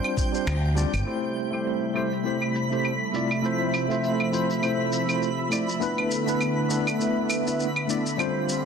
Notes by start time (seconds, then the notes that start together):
Already playing: G3 C4 D4 F4 C5 G5 G6
0.04 claves
0.17 kick, shaker
0.32 G3 C4 D4 F4 C5, shaker
0.47 D2, finger snap, claves, shaker
0.75 G3 C4 D4 F4 D5, shaker
0.93 G1, claves, shaker
1.04 C3 G3 A3 C4 E4 G4 C5 E5 B5 B6, claves, shaker
1.36 shaker
1.51 A3 C4 E4 G4 C5, claves, shaker
1.66 shaker
1.94 A3 C4 E4 G4 C5, claves, shaker
2.12 shaker
2.24 A3 C4 E4 G4 C5, shaker
2.42 claves
2.55 shaker
2.70 A3 C4 E4 G4 C5, shaker
2.85 claves, shaker
3.12 F3 A3 C4 E4 F4 D5, shaker
3.31 claves, shaker
3.42 A3 C4 E4 F4 C5, shaker
3.74 claves, shaker
3.89 A3 C4 E4 F4 C5, shaker
4.04 shaker
4.20 claves
4.31 A3 C4 E4 F4 C5, shaker
4.50 shaker
4.61 A3 C4 E4 F4 C5, claves, shaker
4.92 shaker
5.07 A3 C4 E4 F4 C5, claves, shaker
5.22 shaker
5.50 A3 C4 E4 F4 D5, claves, shaker
5.69 shaker
5.80 D3 A3 B3 D4 E4 B4, shaker
5.98 claves
6.11 shaker
6.26 A3 B3 D4 E4 B4, shaker
6.41 claves, shaker
6.69 A3 B3 D4 E4 B4, shaker
6.87 claves, shaker
6.98 A3 B3 D4 E4 B4, shaker
7.30 claves, shaker
7.45 A3 B3 D4 E4 B4, shaker
7.60 shaker
7.76 claves
7.87 A3 B3 D4 E4 D5, shaker
8.06 shaker
8.17 G3 C4 D4 F4 C5, claves, shaker
8.49 shaker